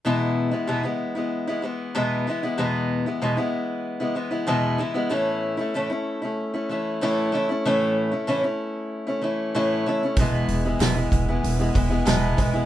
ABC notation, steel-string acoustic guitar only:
X:1
M:4/4
L:1/16
Q:1/4=95
K:E
V:1 name="Steel-string acoustic guitar"
[E,,B,,E,G,B,E]3 [E,G,B,E] [E,,B,,E,G,B,E] [E,G,B,E]2 [E,G,B,E]2 [E,G,B,E] [E,G,B,E]2 [E,,B,,E,G,B,E]2 [E,G,B,E] [E,G,B,E] | [E,,B,,E,G,B,E]3 [E,G,B,E] [E,,B,,E,G,B,E] [E,G,B,E]4 [E,G,B,E] [E,G,B,E] [E,G,B,E] [E,,B,,E,G,B,E]2 [E,G,B,E] [E,G,B,E] | [A,,E,A,CE]3 [A,CE] [A,,E,A,CE] [A,CE]2 [A,CE]2 [A,CE] [E,A,CE]2 [A,,E,A,CE]2 [E,A,CE] [A,CE] | [A,,E,A,CE]3 [A,CE] [A,,E,A,CE] [A,CE]4 [A,CE] [E,A,CE]2 [A,,E,A,CE]2 [E,A,CE] [A,CE] |
[E,,B,,E,G,B,E]3 [E,G,B,E] [E,,B,,E,G,B,E] [E,G,B,E]2 [E,G,B,E]2 [E,G,B,E] [E,G,B,E] [E,G,B,E] [E,,B,,E,G,B,E]2 [E,G,B,E] [E,G,B,E] |]